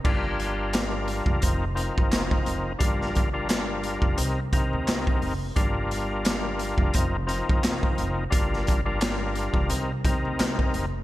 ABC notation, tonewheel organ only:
X:1
M:4/4
L:1/16
Q:"Swing 16ths" 1/4=87
K:Gm
V:1 name="Tonewheel organ"
[G,DFB]8 [F,CEB] z [F,CEB]6 | [G,DFB]3 [G,DFB] [G,DFB]4 [C,CEB] z [C,CEB]4- [C,CEB] z | [G,DFB]8 [F,CEB] z [F,CEB]6 | [G,DFB]3 [G,DFB] [G,DFB]4 [C,CEB] z [C,CEB]4- [C,CEB] z |]